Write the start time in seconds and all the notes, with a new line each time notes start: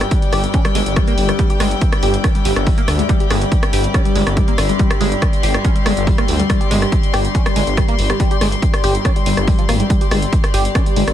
Already playing: G2 G3 G4 D5 G5
0.01 cross-stick, closed hi-hat
0.11 kick, closed hi-hat
0.22 closed hi-hat
0.33 G1 G4, cross-stick, open hi-hat
0.44 closed hi-hat
0.54 C#4, kick, closed hi-hat
0.65 G3, cross-stick, closed hi-hat
0.75 G1 G#3, open hi-hat
0.86 G1, closed hi-hat
0.96 G3, kick, cross-stick, closed hi-hat
1.08 A#3, closed hi-hat
1.18 G1, open hi-hat
1.29 G3, cross-stick, closed hi-hat
1.39 G3, kick, closed hi-hat
1.50 G4, closed hi-hat
1.60 G1 G#3, cross-stick, open hi-hat
1.71 closed hi-hat
1.81 kick, closed hi-hat
1.92 cross-stick, closed hi-hat
2.03 G1 G4, open hi-hat
2.14 closed hi-hat
2.24 C#4, kick, cross-stick, closed hi-hat
2.35 G3, closed hi-hat
2.45 G1 G4, open hi-hat
2.56 G1, cross-stick, closed hi-hat
2.67 G3, kick, open hi-hat
2.78 A#3, closed hi-hat
2.88 D2, cross-stick, open hi-hat
2.99 G#3, closed hi-hat
3.09 G3, kick, closed hi-hat
3.20 G4, closed hi-hat
3.30 G1 G#3, cross-stick, open hi-hat
3.42 closed hi-hat
3.52 kick, closed hi-hat
3.63 cross-stick, closed hi-hat
3.73 G1 G4, open hi-hat
3.84 closed hi-hat
3.94 C#4, kick, cross-stick, closed hi-hat
4.05 G3, closed hi-hat
4.16 G1 G#3, open hi-hat
4.27 G1, cross-stick, closed hi-hat
4.37 G3, kick, closed hi-hat
4.48 A#3 C6, closed hi-hat
4.58 G1, cross-stick, open hi-hat
4.69 G3, closed hi-hat
4.79 G3, kick, closed hi-hat
4.90 G4, cross-stick, closed hi-hat
5.01 G1 G#3, open hi-hat
5.12 closed hi-hat
5.22 kick, cross-stick, closed hi-hat
5.33 closed hi-hat
5.43 G1 G4, open hi-hat
5.54 cross-stick, closed hi-hat
5.64 C#4, kick, closed hi-hat
5.75 G3, closed hi-hat
5.86 G1 G#3, cross-stick, open hi-hat
5.97 G1, closed hi-hat
6.07 G3, kick, open hi-hat
6.18 A#3, cross-stick, closed hi-hat
6.28 D2, open hi-hat
6.39 G3, closed hi-hat
6.49 G3, kick, cross-stick, closed hi-hat
6.61 G4, closed hi-hat
6.71 G1 G#3, open hi-hat
6.82 cross-stick, closed hi-hat
6.92 kick, closed hi-hat
7.03 closed hi-hat
7.13 G1 G4, cross-stick, open hi-hat
7.25 closed hi-hat
7.35 C#4, kick, closed hi-hat
7.46 G3, cross-stick, closed hi-hat
7.56 G1 G#3, open hi-hat
7.67 G1, closed hi-hat
7.77 G3, kick, cross-stick, closed hi-hat
7.88 A#3, closed hi-hat
7.99 G1, open hi-hat
8.10 G3, cross-stick, closed hi-hat
8.20 G3, kick, closed hi-hat
8.31 G4, closed hi-hat
8.41 G1 G#3, cross-stick, open hi-hat
8.52 closed hi-hat
8.62 kick, closed hi-hat
8.74 cross-stick, closed hi-hat
8.84 G1 G4, open hi-hat
8.95 closed hi-hat
9.05 C#4, kick, cross-stick, closed hi-hat
9.16 G3, closed hi-hat
9.26 G1 G3, open hi-hat
9.37 G1, cross-stick, closed hi-hat
9.47 G3, kick, open hi-hat
9.59 F3, closed hi-hat
9.69 G#1 A#3, cross-stick, open hi-hat
9.80 G3, closed hi-hat
9.90 G2 G3, kick, closed hi-hat
10.01 G4, closed hi-hat
10.11 G1 G#3, cross-stick, open hi-hat
10.22 closed hi-hat
10.33 kick, closed hi-hat
10.44 cross-stick, closed hi-hat
10.54 G1 G4, open hi-hat
10.65 closed hi-hat
10.75 C#4, kick, cross-stick, closed hi-hat
10.86 G3, closed hi-hat
10.96 G1 G#3, open hi-hat
11.07 G1, cross-stick, closed hi-hat